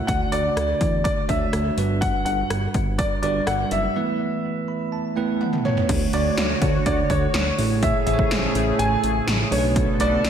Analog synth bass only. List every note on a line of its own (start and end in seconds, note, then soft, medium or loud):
0.08 0.26 D2 loud
0.33 0.50 D2 loud
0.56 0.74 D2 loud
0.81 1.07 E2 medium
1.29 1.47 D2 medium
1.53 1.71 D2 loud
1.77 2.12 G1 medium
2.26 2.43 G1 medium
2.50 2.68 G1 loud
2.74 3.01 G1 medium
3.23 3.40 G1 loud
3.47 3.64 G1 loud
3.71 3.89 F#1 medium
5.89 6.07 D2 loud
6.13 6.31 D2 loud
6.37 6.55 D2 loud
6.62 6.79 D2 loud
6.86 7.03 D2 medium
7.10 7.27 D2 medium
7.34 7.51 D2 loud
7.58 7.93 A1 loud
8.06 8.24 A1 loud
8.31 8.48 A1 loud
8.55 8.72 A1 medium
8.79 8.96 A1 loud
9.03 9.21 A1 medium
9.27 9.45 A1 loud
9.51 9.86 B1 loud
10.00 10.17 B1 medium
10.24 10.30 B1 medium